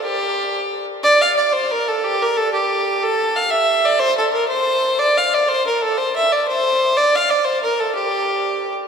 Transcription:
\new Staff \with { instrumentName = "Fiddle" } { \time 6/8 \key g \dorian \tempo 4. = 122 g'2~ g'8 r8 | d''8 f''8 d''8 c''8 bes'8 a'8 | g'8 bes'8 a'8 g'4. | a'4 f''8 e''4 d''8 |
c''8 a'8 bes'8 c''4. | d''8 f''8 d''8 c''8 bes'8 a'8 | c''8 e''8 d''8 c''4. | d''8 f''8 d''8 c''8 bes'8 a'8 |
g'2~ g'8 r8 | }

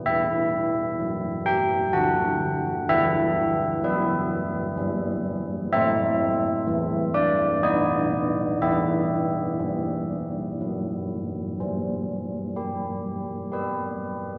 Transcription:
<<
  \new Staff \with { instrumentName = "Church bells" } { \time 3/4 \key e \minor \tempo 4 = 63 << { e''4. g''8 fis''4 | e''4 b'4. r8 | e''4. d''8 dis''4 | e''2~ e''8 r8 |
\key g \major r2. | } \\ { b'2. | b'2. | c''2 b'4 | b'2. |
r2. | } >> }
  \new Staff \with { instrumentName = "Church bells" } { \clef bass \time 3/4 \key e \minor e4 fis4 d4 | e4 fis4 g4 | a4 e4 b4 | e4 g4 fis4 |
\key g \major g4 g'4 <g' b'>4 | }
>>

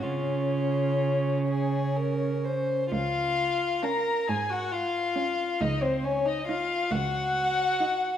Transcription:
<<
  \new Staff \with { instrumentName = "Violin" } { \time 6/8 \key des \major \tempo 4. = 45 des''2~ des''8 r8 | f''4 bes''8 aes''16 ges''16 f''4 | ees''16 c''16 des''16 ees''16 f''8 ges''4. | }
  \new Staff \with { instrumentName = "Violin" } { \time 6/8 \key des \major f'4. aes'8 bes'8 c''8 | f'4 bes'8 aes'16 ges'16 f'4 | ees'16 c'16 des'16 ees'16 f'8 ges'4. | }
  \new Staff \with { instrumentName = "Viola" } { \time 6/8 \key des \major des'2. | r4 des'8 r4 des'8 | r4 ees'8 r4 ees'8 | }
  \new Staff \with { instrumentName = "Cello" } { \clef bass \time 6/8 \key des \major des2. | des,4. aes,4. | des,4. des,4. | }
>>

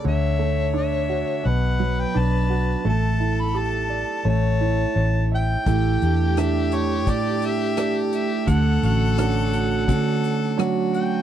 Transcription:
<<
  \new Staff \with { instrumentName = "Harmonica" } { \time 4/4 \key a \mixolydian \tempo 4 = 86 e''4 e''4 fis''8. g''16 a''4 | a''8. b''16 a''4 a''4. g''8~ | g''4 e''8 cis''8 d''8 e''4 e''8 | fis''8 fis''8 fis''2 r8 g''8 | }
  \new Staff \with { instrumentName = "Violin" } { \time 4/4 \key a \mixolydian cis''2 b'2 | a'2 cis''4. r8 | g'1 | a'2 a'4 fis'4 | }
  \new Staff \with { instrumentName = "Upright piano" } { \time 4/4 \key a \mixolydian d8 a8 d'8 fis'8 b,8 fis8 d'8 fis'8 | a8 e'8 g'8 d''8 a8 e'8 cis''8 e''8 | a4 <d' g' a'>4 <g' a' d''>4 <g' a' d''>4 | d4 <cis' d' fis'>4 <cis' d' fis'>4 <fis cis' d'>4 | }
  \new Staff \with { instrumentName = "Vibraphone" } { \time 4/4 \key a \mixolydian r1 | r1 | e'8 <a d' g'>8 d'8 <a d' g'>8 a4 <a d' g'>8 a8 | a8 <a cis' fis'>8 cis'8 <a fis'>8 a4 <a fis'>8 a8 | }
  \new Staff \with { instrumentName = "Fingered electric bass" } { \clef bass \time 4/4 \key a \mixolydian d,2 b,,4 b,,4 | a,,2 a,,4 a,,4 | a,,8 e,4. a,2 | d,8 a,,4. d2 | }
  \new DrumStaff \with { instrumentName = "Drums" } \drummode { \time 4/4 r4 r4 r4 r4 | r4 r4 r4 r4 | <hh bd>8 hh8 <hh ss>8 hh8 <hh bd>8 hh8 <hh ss>8 hh8 | <hh bd>8 hh8 <hh ss>8 hh8 <hh bd>8 hh8 <hh ss>8 hh8 | }
>>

